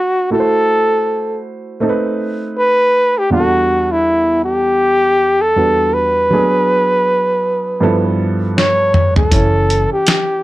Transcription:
Already playing: grand piano A3 D4 C#5, flugelhorn F#4
0.30 grand piano A3 E4 F#4 A4, flugelhorn A4
0.40 grand piano C5
1.80 grand piano A3 C4 D#4 A4
1.89 grand piano B4
2.58 flugelhorn B4
3.18 flugelhorn G4
3.30 grand piano E2 G3 D4 G4 F#5, flugelhorn F#4
3.39 grand piano A4
3.92 flugelhorn E4
4.45 flugelhorn G4
5.42 flugelhorn A4
5.56 grand piano E2 G3 D4 F#4 B4
5.94 flugelhorn B4
6.30 grand piano F#3 A3 D4 G#4
6.38 grand piano B3
7.80 grand piano G2 F3 B3 E4 A4
8.58 flugelhorn C#5, snare
8.94 mid tom
9.16 flugelhorn A4, floor tom
9.30 upright bass F#1, grand piano E3 C#4 E4 C#5, kick, closed hi-hat
9.70 closed hi-hat
9.92 flugelhorn G4
10.07 snare, closed hi-hat

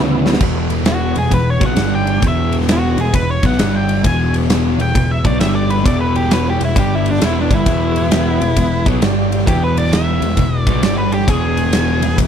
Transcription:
Already playing: picked electric bass D2, distorted electric guitar E2 C#3
0.00 tonewheel organ B3 E4
0.25 distorted electric guitar E2 B2, snare
0.33 snare
0.40 picked electric bass E1, distorted electric guitar E2 B2 E3, tonewheel organ B3 E4 G#4 B4, kick, crash
0.70 ride
0.85 lead electric guitar F#4, snare, ride
1.16 picked electric bass E1, distorted electric guitar E2 B2, lead electric guitar G#4, ride
1.31 picked electric bass E1, distorted electric guitar E2 B2, lead electric guitar B4, kick, ride
1.50 lead electric guitar C#5
1.60 picked electric bass B1, distorted electric guitar B2 F#3 B3, kick, ride
1.66 lead electric guitar F#5
1.76 picked electric bass G1, distorted electric guitar G2 D3 G3, tonewheel organ G3, snare, ride
1.80 tonewheel organ D4 G4 D5
1.95 lead electric guitar G5
2.07 ride
2.22 picked electric bass E1, distorted electric guitar E2 B2 E3, kick, ride
2.27 tonewheel organ B3 E4 G#4 B4, lead electric guitar E5
2.52 ride
2.61 snare
2.69 lead electric guitar F#4, snare, ride
2.96 picked electric bass E1, distorted electric guitar E2 B2, ride
3.01 lead electric guitar G#4
3.14 picked electric bass E1, distorted electric guitar E2 B2, lead electric guitar B4, kick, ride
3.31 lead electric guitar C#5
3.43 picked electric bass B1, distorted electric guitar B2 F#3 B3, lead electric guitar F#5, kick, ride
3.52 snare
3.58 picked electric bass G1, distorted electric guitar G2 D3 G3, tonewheel organ G3 D4 G4 D5, snare, ride
3.76 lead electric guitar G5
3.89 ride
4.03 picked electric bass E1, distorted electric guitar E2 B2 E3, tonewheel organ B3 E4 G#4 B4, lead electric guitar G#5, kick, ride
4.34 ride
4.50 snare, ride
4.79 picked electric bass E1, distorted electric guitar E2 B2, lead electric guitar G5, ride
4.95 picked electric bass E1, distorted electric guitar E2 B2, kick, ride
5.11 lead electric guitar E5
5.24 picked electric bass B1, distorted electric guitar B2 F#3 B3, lead electric guitar D5, kick, ride
5.40 picked electric bass G1, distorted electric guitar G2 D3 G3, tonewheel organ G3 D4 G4 D5, lead electric guitar E5, snare, ride
5.55 lead electric guitar D5
5.70 lead electric guitar B4, ride
5.85 picked electric bass E1, distorted electric guitar E2 B2 E3, tonewheel organ B3 E4 G#4 B4, lead electric guitar D5, kick, ride
6.01 lead electric guitar B4
6.16 lead electric guitar G4, ride
6.31 lead electric guitar B4, snare, ride
6.50 lead electric guitar G4
6.61 picked electric bass E1, distorted electric guitar E2 B2, ride
6.65 lead electric guitar E4
6.74 picked electric bass G1, distorted electric guitar G2 D3 G3, tonewheel organ G3 D4 G4 D5, kick, ride
6.79 lead electric guitar G4
6.95 lead electric guitar E4
7.06 ride
7.11 lead electric guitar D4, snare
7.20 picked electric bass E1, distorted electric guitar E2 B2 E3, tonewheel organ C4 F4 A4 C5, snare, ride
7.25 lead electric guitar E4
7.36 tonewheel organ B3 E4 G#4 B4
7.41 lead electric guitar D4
7.50 picked electric bass G1, distorted electric guitar G2 D3 G3, lead electric guitar E4, kick, ride
7.65 picked electric bass E1, distorted electric guitar E2 B2 E3, kick, ride
7.96 ride
8.11 snare, ride
8.41 picked electric bass E1, distorted electric guitar E2 B2, ride
8.56 picked electric bass E1, distorted electric guitar E2 B2, kick, ride
8.86 picked electric bass B1, distorted electric guitar B2 F#3 B3, kick, ride
9.01 picked electric bass G1, distorted electric guitar G2 D3 G3, tonewheel organ G3 D4 G4 D5, snare, ride
9.32 ride
9.46 picked electric bass E1, distorted electric guitar E2 B2 E3, tonewheel organ B3 E4 G#4 B4, lead electric guitar G4, kick, ride
9.64 lead electric guitar B4
9.77 lead electric guitar D5, ride
9.86 snare
9.92 lead electric guitar E5, snare, ride
10.22 picked electric bass E1, distorted electric guitar E2 B2, ride
10.37 picked electric bass E1, distorted electric guitar E2 B2, kick, ride
10.59 lead electric guitar D5
10.66 picked electric bass B1, distorted electric guitar B2 F#3 B3, kick, ride
10.83 picked electric bass G1, distorted electric guitar G2 D3 G3, tonewheel organ G3 D4 G4 D5, lead electric guitar D5, snare, ride
10.98 lead electric guitar B4
11.12 lead electric guitar G4, ride
11.28 picked electric bass E1, distorted electric guitar E2 B2 E3, tonewheel organ C4 F4 A4 C5, lead electric guitar G#4, kick, ride
11.43 tonewheel organ B3 E4 G#4 B4
11.57 ride
11.73 snare, ride
12.02 picked electric bass E1, distorted electric guitar E2 B2, ride
12.18 picked electric bass E1, distorted electric guitar E2 B2, kick, ride

